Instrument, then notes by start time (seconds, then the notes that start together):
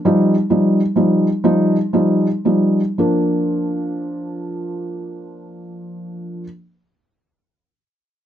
felt piano
0.05 F3 G3 D#4
0.50 F3 G3 D#4
0.96 F3 G3 D#4
1.44 F3 G3 D#4
1.93 F3 G3 D#4
2.45 F3 G3 D#4
2.98 F3 A#3 D4